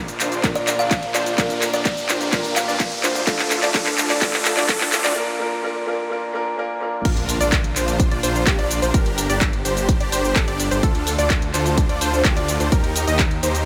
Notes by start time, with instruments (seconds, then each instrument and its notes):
Already playing: detuned saw bass A#1, grand piano A#2 A#3 D4 F4 A#4, string section A#3 D4 F4, riser
0.08 closed hi-hat, shaker
0.20 detuned saw bass A#1, supersaw synth D4 F4 C5, synth pluck C5, clap, open hi-hat, shaker
0.32 closed hi-hat, shaker
0.43 grand piano A#2 A#3 D4 F4 A#4, supersaw synth D4 F4 A#4, synth pluck A#4, kick, clap, closed hi-hat, shaker
0.55 kalimba D5, closed hi-hat, shaker
0.67 kalimba D5, clap, open hi-hat, shaker
0.79 detuned saw bass A#1, supersaw synth D4 F4 D5, synth pluck D5, kalimba F5, shaker
0.91 kick, clap, closed hi-hat, shaker
1.03 closed hi-hat
1.14 detuned saw bass A#1, supersaw synth D4 F4 C5, synth pluck C5, kalimba D5, clap, open hi-hat, shaker
1.26 closed hi-hat, shaker
1.37 grand piano A#2 A#3 D4 F4 A#4, string section A#3 G4, supersaw synth D4 F4 A#4, synth pluck A#4, kick, clap, closed hi-hat, shaker
1.50 closed hi-hat, shaker
1.62 clap, open hi-hat, shaker
1.74 detuned saw bass G1, supersaw synth D4 F4 D5, kalimba D5, synth pluck D5, closed hi-hat, shaker
1.85 kick, clap, closed hi-hat, shaker
1.97 closed hi-hat, shaker
2.09 detuned saw bass G1, supersaw synth D4 F4 C5, synth pluck C5, clap, open hi-hat, shaker
2.21 closed hi-hat, shaker
2.31 grand piano A#2 A#3 D4 F4 A#4, supersaw synth D4 F4 A#4, synth pluck A#4, kick, clap, closed hi-hat, shaker
2.44 closed hi-hat, shaker
2.56 kalimba F5, clap, open hi-hat, shaker
2.68 detuned saw bass G2, supersaw synth D4 F4 D5, synth pluck D5, shaker
2.80 kick, clap, closed hi-hat, shaker
2.92 closed hi-hat
3.03 detuned saw bass D2, supersaw synth D4 F4 C5, synth pluck C5, clap, open hi-hat, shaker
3.15 closed hi-hat, shaker
3.26 grand piano A2 A3 D4 F4 A4, string section D3 D4 F4 A4, supersaw synth D4 F4 A4, synth pluck A4, kick, clap, closed hi-hat, shaker
3.39 clap, closed hi-hat, shaker
3.51 clap, open hi-hat, shaker
3.63 detuned saw bass D2, supersaw synth D4 F4 D5, synth pluck D5, clap, closed hi-hat, shaker
3.73 grand piano A2 A3 D4 F4 A4, supersaw synth D4 A4, synth pluck A4, kick, clap, closed hi-hat, shaker
3.86 clap, closed hi-hat, shaker
3.98 clap, open hi-hat, shaker
4.10 detuned saw bass D2, supersaw synth D4 F4 D5, synth pluck D5, clap, closed hi-hat, shaker
4.21 detuned saw bass D2, grand piano A2 A3 D4 F4 A4, supersaw synth D4 F4, synth pluck A4, kick, clap, closed hi-hat, shaker
4.33 clap, closed hi-hat, shaker
4.45 clap, open hi-hat, shaker
4.57 detuned saw bass D2, supersaw synth D4 F4 D5, synth pluck D5, clap, shaker
4.68 detuned saw bass D2, grand piano A2 A3 D4 F4 A4, supersaw synth D4 F4 A4, synth pluck A4, kick, clap, closed hi-hat, shaker
4.81 clap, closed hi-hat
4.92 clap, open hi-hat, shaker
5.04 detuned saw bass D2, supersaw synth D4 F4 D5, synth pluck D5, clap, closed hi-hat, shaker
5.15 grand piano A#2 A#3 D4 F4 A#4
5.38 grand piano A#2 A#3 D4 F4 A#4
5.62 grand piano A#2 A#3 D4 F4 A#4
5.86 grand piano A#2 A#3 D4 F4 A#4
6.09 grand piano A#2 A#3 D4 F4 A#4
6.33 grand piano A#2 A#3 D4 F4 A#4
6.57 grand piano A#2 A#3 D4 F4 A#4
6.80 grand piano A#2 A#3 D4 F4 A#4
7.05 detuned saw bass A#1, string section A#3 D4 F4, supersaw synth D4 F4 A#4, synth pluck A#4, kick, closed hi-hat, crash, impact, shaker
7.17 closed hi-hat
7.29 open hi-hat, shaker
7.40 detuned saw bass A#1, supersaw synth D4 F4 D5, synth pluck D5, closed hi-hat, shaker
7.52 kick, clap, closed hi-hat, shaker
7.64 closed hi-hat
7.76 detuned saw bass A#1, supersaw synth D4 F4 C5, synth pluck C5, clap, open hi-hat, shaker
7.88 closed hi-hat, shaker
8.00 kick, closed hi-hat, shaker
8.11 detuned saw bass A#1, supersaw synth D4 F4 D5, synth pluck D5, closed hi-hat
8.23 detuned saw bass A#1, supersaw synth D4 F4 C5, synth pluck C5, open hi-hat, shaker
8.36 shaker
8.47 supersaw synth F4, synth pluck G4, kick, clap, closed hi-hat, shaker
8.59 detuned saw bass A#1, supersaw synth D4 F4 D5, synth pluck D5, closed hi-hat
8.71 open hi-hat, shaker
8.82 detuned saw bass A#1, supersaw synth D4 F4 C5, synth pluck C5, closed hi-hat, shaker
8.94 detuned saw bass G1, supersaw synth D4 G4 A#4, string section D4 G4, synth pluck A#4, kick, closed hi-hat, shaker
9.06 closed hi-hat
9.18 open hi-hat, shaker
9.30 detuned saw bass G1, supersaw synth D4 G4 D5, synth pluck D5, closed hi-hat, shaker
9.41 kick, clap, closed hi-hat, shaker
9.53 closed hi-hat
9.65 detuned saw bass G1, supersaw synth D4 G4 C5, synth pluck C5, open hi-hat, shaker
9.77 closed hi-hat, shaker
9.89 kick, closed hi-hat, shaker
10.00 detuned saw bass G1, supersaw synth D4 G4 D5, synth pluck D5, closed hi-hat
10.12 detuned saw bass G1, supersaw synth D4 G4 C5, synth pluck C5, open hi-hat, shaker
10.25 shaker
10.36 detuned saw bass G1, supersaw synth G4 A4, synth pluck A4, kick, clap, closed hi-hat, shaker
10.48 detuned saw bass G1, supersaw synth D4 G4 D5, synth pluck D5, closed hi-hat
10.60 open hi-hat, shaker
10.71 detuned saw bass G1, supersaw synth D4 G4 C5, synth pluck C5, closed hi-hat, shaker
10.83 detuned saw bass D2, string section D3 F4 A4, supersaw synth D4 F4 A4, synth pluck A4, kick, closed hi-hat, shaker
10.95 closed hi-hat
11.07 open hi-hat, shaker
11.18 detuned saw bass D2, supersaw synth D4 F4 D5, synth pluck D5, closed hi-hat, shaker
11.30 kick, clap, closed hi-hat, shaker
11.42 closed hi-hat
11.54 detuned saw bass D2, supersaw synth D4 F4 C5, synth pluck C5, clap, open hi-hat, shaker
11.66 closed hi-hat, shaker
11.78 kick, closed hi-hat, shaker
11.89 detuned saw bass D2, supersaw synth D4 F4 D5, synth pluck D5, closed hi-hat
12.01 detuned saw bass D2, supersaw synth D4 F4 C5, synth pluck C5, open hi-hat, shaker
12.14 shaker
12.25 detuned saw bass D2, supersaw synth F4, synth pluck G4, kick, clap, closed hi-hat, shaker
12.37 detuned saw bass D2, supersaw synth D4 F4 D5, synth pluck D5, closed hi-hat
12.48 open hi-hat, shaker
12.60 detuned saw bass D2, supersaw synth D4 F4 C5, synth pluck C5, closed hi-hat, shaker
12.72 string section D#3 D#4 G4 A#4, supersaw synth D#4 G4 A#4, synth pluck A#4, kick, closed hi-hat, shaker
12.84 closed hi-hat
12.96 open hi-hat, shaker
13.07 detuned saw bass D#2, supersaw synth D#4 G4 D#5, synth pluck D#5, closed hi-hat, shaker
13.19 kick, clap, closed hi-hat, shaker
13.31 closed hi-hat
13.43 detuned saw bass D#2, supersaw synth D#4 G4 C5, synth pluck C5, open hi-hat, shaker
13.55 closed hi-hat, shaker